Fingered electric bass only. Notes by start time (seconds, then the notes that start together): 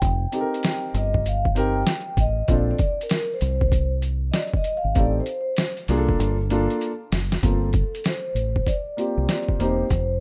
0.02 F1
0.94 G1
2.17 A1
2.49 A#1
3.42 C2
4.84 G#1
4.96 A1
5.89 C2
6.19 G1
7.12 F#1
7.43 G1
8.35 A1
9.17 C2
9.59 E1
9.90 F1